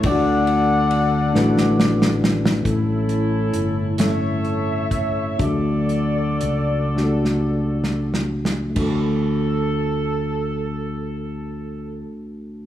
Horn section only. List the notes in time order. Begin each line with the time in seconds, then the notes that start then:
0.06 A4 D5 F#5
2.67 C#4 E4 A4
3.99 A4 C#5 E5
5.42 F#4 A4 D5
8.78 A4